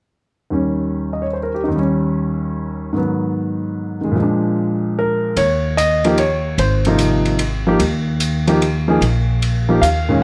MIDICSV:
0, 0, Header, 1, 4, 480
1, 0, Start_track
1, 0, Tempo, 404313
1, 616, Time_signature, 3, 2, 24, 8
1, 12145, End_track
2, 0, Start_track
2, 0, Title_t, "Grand piano"
2, 0, Program_c, 0, 0
2, 599, Note_on_c, 0, 39, 37
2, 614, Note_on_c, 0, 51, 35
2, 615, Note_on_c, 0, 55, 35
2, 630, Note_on_c, 0, 61, 45
2, 1342, Note_on_c, 0, 75, 36
2, 1448, Note_on_c, 0, 73, 39
2, 1489, Note_off_c, 0, 75, 0
2, 1584, Note_on_c, 0, 72, 38
2, 1619, Note_off_c, 0, 73, 0
2, 1699, Note_on_c, 0, 70, 40
2, 1800, Note_off_c, 0, 72, 0
2, 1834, Note_on_c, 0, 67, 43
2, 1900, Note_off_c, 0, 70, 0
2, 1944, Note_on_c, 0, 63, 44
2, 1975, Note_off_c, 0, 67, 0
2, 1978, Note_off_c, 0, 39, 0
2, 1996, Note_on_c, 0, 39, 45
2, 2018, Note_off_c, 0, 51, 0
2, 2036, Note_on_c, 0, 51, 39
2, 2055, Note_off_c, 0, 55, 0
2, 2063, Note_off_c, 0, 61, 0
2, 2085, Note_on_c, 0, 55, 44
2, 2107, Note_off_c, 0, 63, 0
2, 2124, Note_on_c, 0, 61, 52
2, 3466, Note_off_c, 0, 39, 0
2, 3474, Note_off_c, 0, 51, 0
2, 3474, Note_on_c, 0, 44, 42
2, 3492, Note_on_c, 0, 51, 42
2, 3510, Note_on_c, 0, 54, 38
2, 3511, Note_off_c, 0, 55, 0
2, 3530, Note_off_c, 0, 61, 0
2, 3531, Note_on_c, 0, 59, 47
2, 4744, Note_off_c, 0, 51, 0
2, 4762, Note_on_c, 0, 51, 39
2, 4797, Note_on_c, 0, 56, 42
2, 4886, Note_on_c, 0, 46, 49
2, 4926, Note_off_c, 0, 44, 0
2, 4932, Note_off_c, 0, 51, 0
2, 4932, Note_on_c, 0, 53, 45
2, 4944, Note_off_c, 0, 54, 0
2, 4949, Note_off_c, 0, 56, 0
2, 4954, Note_off_c, 0, 59, 0
2, 4976, Note_on_c, 0, 56, 45
2, 5016, Note_on_c, 0, 62, 53
2, 5919, Note_on_c, 0, 70, 64
2, 6352, Note_off_c, 0, 46, 0
2, 6375, Note_off_c, 0, 53, 0
2, 6379, Note_on_c, 0, 73, 82
2, 6397, Note_off_c, 0, 56, 0
2, 6403, Note_off_c, 0, 70, 0
2, 6417, Note_off_c, 0, 62, 0
2, 6855, Note_on_c, 0, 75, 91
2, 6873, Note_off_c, 0, 73, 0
2, 7181, Note_on_c, 0, 53, 60
2, 7188, Note_on_c, 0, 58, 57
2, 7199, Note_on_c, 0, 63, 53
2, 7201, Note_on_c, 0, 67, 63
2, 7325, Note_off_c, 0, 53, 0
2, 7329, Note_off_c, 0, 58, 0
2, 7334, Note_off_c, 0, 63, 0
2, 7336, Note_off_c, 0, 67, 0
2, 7344, Note_on_c, 0, 73, 79
2, 7351, Note_off_c, 0, 75, 0
2, 7827, Note_on_c, 0, 72, 65
2, 7835, Note_off_c, 0, 73, 0
2, 8149, Note_on_c, 0, 48, 59
2, 8152, Note_on_c, 0, 53, 53
2, 8158, Note_on_c, 0, 58, 52
2, 8166, Note_on_c, 0, 63, 65
2, 8269, Note_off_c, 0, 72, 0
2, 8753, Note_off_c, 0, 48, 0
2, 8754, Note_off_c, 0, 53, 0
2, 8757, Note_off_c, 0, 58, 0
2, 8761, Note_off_c, 0, 63, 0
2, 9102, Note_on_c, 0, 53, 59
2, 9110, Note_on_c, 0, 58, 49
2, 9118, Note_on_c, 0, 63, 48
2, 9121, Note_on_c, 0, 67, 61
2, 9246, Note_off_c, 0, 53, 0
2, 9250, Note_off_c, 0, 58, 0
2, 9254, Note_off_c, 0, 63, 0
2, 9255, Note_off_c, 0, 67, 0
2, 10060, Note_on_c, 0, 53, 55
2, 10068, Note_on_c, 0, 58, 54
2, 10077, Note_on_c, 0, 63, 52
2, 10081, Note_on_c, 0, 67, 64
2, 10205, Note_off_c, 0, 53, 0
2, 10209, Note_off_c, 0, 58, 0
2, 10213, Note_off_c, 0, 63, 0
2, 10215, Note_off_c, 0, 67, 0
2, 10541, Note_on_c, 0, 53, 62
2, 10548, Note_on_c, 0, 58, 54
2, 10557, Note_on_c, 0, 63, 54
2, 10567, Note_on_c, 0, 68, 69
2, 10685, Note_off_c, 0, 53, 0
2, 10689, Note_off_c, 0, 58, 0
2, 10693, Note_off_c, 0, 63, 0
2, 10698, Note_off_c, 0, 68, 0
2, 11501, Note_on_c, 0, 53, 53
2, 11501, Note_on_c, 0, 58, 49
2, 11514, Note_on_c, 0, 63, 46
2, 11523, Note_on_c, 0, 67, 60
2, 11645, Note_off_c, 0, 53, 0
2, 11645, Note_off_c, 0, 58, 0
2, 11651, Note_off_c, 0, 63, 0
2, 11653, Note_on_c, 0, 77, 80
2, 11656, Note_off_c, 0, 67, 0
2, 11975, Note_on_c, 0, 46, 56
2, 11978, Note_on_c, 0, 51, 53
2, 11991, Note_on_c, 0, 56, 51
2, 11997, Note_on_c, 0, 61, 65
2, 12122, Note_off_c, 0, 46, 0
2, 12124, Note_off_c, 0, 51, 0
2, 12130, Note_off_c, 0, 56, 0
2, 12133, Note_off_c, 0, 61, 0
2, 12145, Note_off_c, 0, 77, 0
2, 12145, End_track
3, 0, Start_track
3, 0, Title_t, "Upright bass"
3, 0, Program_c, 1, 32
3, 6371, Note_on_c, 1, 39, 76
3, 7767, Note_off_c, 1, 39, 0
3, 7810, Note_on_c, 1, 32, 83
3, 9206, Note_off_c, 1, 32, 0
3, 9252, Note_on_c, 1, 39, 80
3, 10647, Note_off_c, 1, 39, 0
3, 10695, Note_on_c, 1, 34, 80
3, 11608, Note_off_c, 1, 34, 0
3, 11654, Note_on_c, 1, 39, 63
3, 12101, Note_off_c, 1, 39, 0
3, 12145, End_track
4, 0, Start_track
4, 0, Title_t, "Drums"
4, 6371, Note_on_c, 9, 51, 48
4, 6489, Note_off_c, 9, 51, 0
4, 6863, Note_on_c, 9, 44, 44
4, 6863, Note_on_c, 9, 51, 55
4, 6982, Note_off_c, 9, 44, 0
4, 6982, Note_off_c, 9, 51, 0
4, 7175, Note_on_c, 9, 51, 35
4, 7294, Note_off_c, 9, 51, 0
4, 7333, Note_on_c, 9, 51, 46
4, 7452, Note_off_c, 9, 51, 0
4, 7816, Note_on_c, 9, 51, 48
4, 7935, Note_off_c, 9, 51, 0
4, 8129, Note_on_c, 9, 51, 38
4, 8248, Note_off_c, 9, 51, 0
4, 8293, Note_on_c, 9, 44, 47
4, 8293, Note_on_c, 9, 51, 52
4, 8412, Note_off_c, 9, 44, 0
4, 8412, Note_off_c, 9, 51, 0
4, 8612, Note_on_c, 9, 51, 39
4, 8731, Note_off_c, 9, 51, 0
4, 8772, Note_on_c, 9, 51, 52
4, 8891, Note_off_c, 9, 51, 0
4, 9256, Note_on_c, 9, 51, 50
4, 9374, Note_off_c, 9, 51, 0
4, 9737, Note_on_c, 9, 44, 51
4, 9737, Note_on_c, 9, 51, 54
4, 9856, Note_off_c, 9, 44, 0
4, 9856, Note_off_c, 9, 51, 0
4, 10061, Note_on_c, 9, 51, 38
4, 10180, Note_off_c, 9, 51, 0
4, 10232, Note_on_c, 9, 51, 46
4, 10351, Note_off_c, 9, 51, 0
4, 10707, Note_on_c, 9, 51, 51
4, 10826, Note_off_c, 9, 51, 0
4, 11187, Note_on_c, 9, 51, 47
4, 11306, Note_off_c, 9, 51, 0
4, 11668, Note_on_c, 9, 44, 50
4, 11668, Note_on_c, 9, 51, 54
4, 11787, Note_off_c, 9, 44, 0
4, 11787, Note_off_c, 9, 51, 0
4, 12145, End_track
0, 0, End_of_file